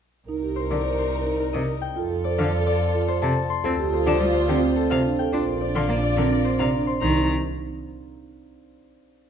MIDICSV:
0, 0, Header, 1, 8, 480
1, 0, Start_track
1, 0, Tempo, 560748
1, 241, Time_signature, 3, 2, 24, 8
1, 7959, End_track
2, 0, Start_track
2, 0, Title_t, "Violin"
2, 0, Program_c, 0, 40
2, 3483, Note_on_c, 0, 81, 83
2, 3573, Note_off_c, 0, 81, 0
2, 4203, Note_on_c, 0, 77, 73
2, 4293, Note_off_c, 0, 77, 0
2, 4923, Note_on_c, 0, 84, 74
2, 5013, Note_off_c, 0, 84, 0
2, 5642, Note_on_c, 0, 77, 66
2, 5732, Note_off_c, 0, 77, 0
2, 6001, Note_on_c, 0, 82, 79
2, 6224, Note_off_c, 0, 82, 0
2, 7959, End_track
3, 0, Start_track
3, 0, Title_t, "Harp"
3, 0, Program_c, 1, 46
3, 478, Note_on_c, 1, 72, 53
3, 604, Note_on_c, 1, 74, 59
3, 831, Note_off_c, 1, 72, 0
3, 841, Note_on_c, 1, 72, 55
3, 1197, Note_on_c, 1, 70, 53
3, 1311, Note_on_c, 1, 75, 69
3, 1554, Note_on_c, 1, 79, 60
3, 1695, Note_off_c, 1, 75, 0
3, 1697, Note_off_c, 1, 79, 0
3, 1698, Note_off_c, 1, 70, 0
3, 1702, Note_off_c, 1, 74, 0
3, 1919, Note_on_c, 1, 74, 66
3, 2041, Note_on_c, 1, 77, 87
3, 2270, Note_off_c, 1, 74, 0
3, 2280, Note_on_c, 1, 74, 71
3, 2627, Note_off_c, 1, 72, 0
3, 2637, Note_on_c, 1, 72, 71
3, 2757, Note_on_c, 1, 81, 85
3, 2994, Note_on_c, 1, 84, 69
3, 3115, Note_on_c, 1, 69, 82
3, 3355, Note_off_c, 1, 72, 0
3, 3365, Note_on_c, 1, 72, 65
3, 3473, Note_off_c, 1, 74, 0
3, 3484, Note_on_c, 1, 74, 82
3, 3710, Note_off_c, 1, 72, 0
3, 3720, Note_on_c, 1, 72, 71
3, 3841, Note_on_c, 1, 67, 80
3, 4064, Note_off_c, 1, 69, 0
3, 4075, Note_on_c, 1, 69, 67
3, 4185, Note_off_c, 1, 77, 0
3, 4195, Note_on_c, 1, 77, 77
3, 4440, Note_on_c, 1, 79, 60
3, 4553, Note_off_c, 1, 72, 0
3, 4563, Note_on_c, 1, 72, 68
3, 4577, Note_off_c, 1, 69, 0
3, 4577, Note_off_c, 1, 84, 0
3, 4579, Note_off_c, 1, 81, 0
3, 4580, Note_off_c, 1, 79, 0
3, 4581, Note_off_c, 1, 67, 0
3, 4793, Note_off_c, 1, 74, 0
3, 4803, Note_on_c, 1, 74, 60
3, 4914, Note_off_c, 1, 77, 0
3, 4925, Note_on_c, 1, 77, 74
3, 5151, Note_off_c, 1, 74, 0
3, 5161, Note_on_c, 1, 74, 56
3, 5282, Note_on_c, 1, 70, 75
3, 5507, Note_off_c, 1, 72, 0
3, 5517, Note_on_c, 1, 72, 61
3, 5642, Note_on_c, 1, 82, 70
3, 5880, Note_on_c, 1, 84, 62
3, 5996, Note_off_c, 1, 72, 0
3, 6006, Note_on_c, 1, 72, 76
3, 6021, Note_off_c, 1, 74, 0
3, 6022, Note_off_c, 1, 77, 0
3, 6227, Note_off_c, 1, 72, 0
3, 7460, Note_off_c, 1, 84, 0
3, 7461, Note_off_c, 1, 70, 0
3, 7461, Note_off_c, 1, 82, 0
3, 7959, End_track
4, 0, Start_track
4, 0, Title_t, "Marimba"
4, 0, Program_c, 2, 12
4, 244, Note_on_c, 2, 63, 65
4, 364, Note_on_c, 2, 67, 51
4, 399, Note_off_c, 2, 63, 0
4, 488, Note_on_c, 2, 70, 52
4, 518, Note_off_c, 2, 67, 0
4, 640, Note_off_c, 2, 70, 0
4, 724, Note_on_c, 2, 72, 55
4, 879, Note_off_c, 2, 72, 0
4, 1083, Note_on_c, 2, 63, 52
4, 1202, Note_on_c, 2, 70, 62
4, 1238, Note_off_c, 2, 63, 0
4, 1358, Note_off_c, 2, 70, 0
4, 1680, Note_on_c, 2, 65, 82
4, 1801, Note_on_c, 2, 69, 63
4, 1837, Note_off_c, 2, 65, 0
4, 1922, Note_on_c, 2, 72, 69
4, 1957, Note_off_c, 2, 69, 0
4, 2078, Note_off_c, 2, 72, 0
4, 2164, Note_on_c, 2, 74, 67
4, 2318, Note_off_c, 2, 74, 0
4, 2523, Note_on_c, 2, 65, 72
4, 2642, Note_on_c, 2, 72, 79
4, 2678, Note_off_c, 2, 65, 0
4, 2798, Note_off_c, 2, 72, 0
4, 3123, Note_on_c, 2, 65, 85
4, 3245, Note_on_c, 2, 67, 69
4, 3278, Note_off_c, 2, 65, 0
4, 3365, Note_on_c, 2, 69, 71
4, 3399, Note_off_c, 2, 67, 0
4, 3519, Note_off_c, 2, 69, 0
4, 3607, Note_on_c, 2, 72, 63
4, 3760, Note_off_c, 2, 72, 0
4, 3846, Note_on_c, 2, 60, 80
4, 3966, Note_on_c, 2, 65, 63
4, 3999, Note_off_c, 2, 60, 0
4, 4086, Note_on_c, 2, 69, 67
4, 4119, Note_off_c, 2, 65, 0
4, 4203, Note_on_c, 2, 72, 76
4, 4239, Note_off_c, 2, 69, 0
4, 4323, Note_on_c, 2, 62, 61
4, 4358, Note_off_c, 2, 72, 0
4, 4446, Note_on_c, 2, 69, 64
4, 4478, Note_off_c, 2, 62, 0
4, 4565, Note_on_c, 2, 65, 76
4, 4599, Note_off_c, 2, 69, 0
4, 4685, Note_on_c, 2, 70, 58
4, 4719, Note_off_c, 2, 65, 0
4, 4805, Note_on_c, 2, 72, 52
4, 4839, Note_off_c, 2, 70, 0
4, 4959, Note_off_c, 2, 72, 0
4, 5043, Note_on_c, 2, 74, 55
4, 5198, Note_off_c, 2, 74, 0
4, 5282, Note_on_c, 2, 60, 71
4, 5404, Note_on_c, 2, 65, 55
4, 5438, Note_off_c, 2, 60, 0
4, 5525, Note_on_c, 2, 72, 61
4, 5559, Note_off_c, 2, 65, 0
4, 5644, Note_on_c, 2, 74, 73
4, 5679, Note_off_c, 2, 72, 0
4, 5763, Note_on_c, 2, 62, 62
4, 5798, Note_off_c, 2, 74, 0
4, 5883, Note_on_c, 2, 72, 63
4, 5918, Note_off_c, 2, 62, 0
4, 6004, Note_on_c, 2, 63, 78
4, 6038, Note_off_c, 2, 72, 0
4, 6226, Note_off_c, 2, 63, 0
4, 7959, End_track
5, 0, Start_track
5, 0, Title_t, "French horn"
5, 0, Program_c, 3, 60
5, 237, Note_on_c, 3, 70, 39
5, 423, Note_off_c, 3, 70, 0
5, 505, Note_on_c, 3, 70, 52
5, 690, Note_off_c, 3, 70, 0
5, 770, Note_on_c, 3, 70, 63
5, 955, Note_off_c, 3, 70, 0
5, 1033, Note_on_c, 3, 70, 60
5, 1218, Note_off_c, 3, 70, 0
5, 1299, Note_on_c, 3, 70, 42
5, 1483, Note_off_c, 3, 70, 0
5, 1681, Note_on_c, 3, 69, 52
5, 1866, Note_off_c, 3, 69, 0
5, 1937, Note_on_c, 3, 69, 75
5, 2125, Note_off_c, 3, 69, 0
5, 2203, Note_on_c, 3, 69, 82
5, 2390, Note_off_c, 3, 69, 0
5, 2472, Note_on_c, 3, 69, 72
5, 2658, Note_off_c, 3, 69, 0
5, 2738, Note_on_c, 3, 69, 51
5, 2923, Note_off_c, 3, 69, 0
5, 3116, Note_on_c, 3, 65, 57
5, 3303, Note_off_c, 3, 65, 0
5, 3382, Note_on_c, 3, 65, 78
5, 3568, Note_off_c, 3, 65, 0
5, 3641, Note_on_c, 3, 65, 76
5, 3829, Note_off_c, 3, 65, 0
5, 3904, Note_on_c, 3, 65, 67
5, 4092, Note_off_c, 3, 65, 0
5, 4175, Note_on_c, 3, 65, 46
5, 4361, Note_off_c, 3, 65, 0
5, 4563, Note_on_c, 3, 62, 47
5, 4748, Note_off_c, 3, 62, 0
5, 4822, Note_on_c, 3, 62, 58
5, 5008, Note_off_c, 3, 62, 0
5, 5085, Note_on_c, 3, 62, 59
5, 5271, Note_off_c, 3, 62, 0
5, 5352, Note_on_c, 3, 62, 58
5, 5537, Note_off_c, 3, 62, 0
5, 5614, Note_on_c, 3, 62, 41
5, 5800, Note_off_c, 3, 62, 0
5, 7959, End_track
6, 0, Start_track
6, 0, Title_t, "String section"
6, 0, Program_c, 4, 48
6, 245, Note_on_c, 4, 70, 66
6, 247, Note_on_c, 4, 63, 61
6, 1529, Note_off_c, 4, 70, 0
6, 1530, Note_off_c, 4, 63, 0
6, 1681, Note_on_c, 4, 69, 75
6, 1682, Note_on_c, 4, 65, 73
6, 2967, Note_off_c, 4, 65, 0
6, 2967, Note_off_c, 4, 69, 0
6, 3119, Note_on_c, 4, 65, 91
6, 3119, Note_on_c, 4, 72, 91
6, 4406, Note_off_c, 4, 65, 0
6, 4406, Note_off_c, 4, 72, 0
6, 4565, Note_on_c, 4, 65, 66
6, 4566, Note_on_c, 4, 74, 71
6, 5849, Note_off_c, 4, 65, 0
6, 5849, Note_off_c, 4, 74, 0
6, 7959, End_track
7, 0, Start_track
7, 0, Title_t, "Cello"
7, 0, Program_c, 5, 42
7, 604, Note_on_c, 5, 50, 60
7, 693, Note_off_c, 5, 50, 0
7, 1322, Note_on_c, 5, 48, 76
7, 1412, Note_off_c, 5, 48, 0
7, 2043, Note_on_c, 5, 50, 82
7, 2133, Note_off_c, 5, 50, 0
7, 2760, Note_on_c, 5, 48, 85
7, 2850, Note_off_c, 5, 48, 0
7, 3118, Note_on_c, 5, 60, 73
7, 3210, Note_off_c, 5, 60, 0
7, 3477, Note_on_c, 5, 50, 78
7, 3569, Note_off_c, 5, 50, 0
7, 3596, Note_on_c, 5, 55, 64
7, 3688, Note_off_c, 5, 55, 0
7, 3837, Note_on_c, 5, 50, 78
7, 3929, Note_off_c, 5, 50, 0
7, 4199, Note_on_c, 5, 48, 71
7, 4290, Note_off_c, 5, 48, 0
7, 4559, Note_on_c, 5, 62, 62
7, 4650, Note_off_c, 5, 62, 0
7, 4923, Note_on_c, 5, 50, 76
7, 5012, Note_off_c, 5, 50, 0
7, 5039, Note_on_c, 5, 58, 59
7, 5130, Note_off_c, 5, 58, 0
7, 5280, Note_on_c, 5, 50, 75
7, 5371, Note_off_c, 5, 50, 0
7, 5642, Note_on_c, 5, 48, 71
7, 5732, Note_off_c, 5, 48, 0
7, 6004, Note_on_c, 5, 51, 74
7, 6226, Note_off_c, 5, 51, 0
7, 7959, End_track
8, 0, Start_track
8, 0, Title_t, "Double bass"
8, 0, Program_c, 6, 43
8, 241, Note_on_c, 6, 36, 60
8, 1551, Note_off_c, 6, 36, 0
8, 1683, Note_on_c, 6, 41, 68
8, 2992, Note_off_c, 6, 41, 0
8, 3124, Note_on_c, 6, 38, 74
8, 4433, Note_off_c, 6, 38, 0
8, 4564, Note_on_c, 6, 34, 60
8, 5872, Note_off_c, 6, 34, 0
8, 6006, Note_on_c, 6, 36, 75
8, 6227, Note_off_c, 6, 36, 0
8, 7959, End_track
0, 0, End_of_file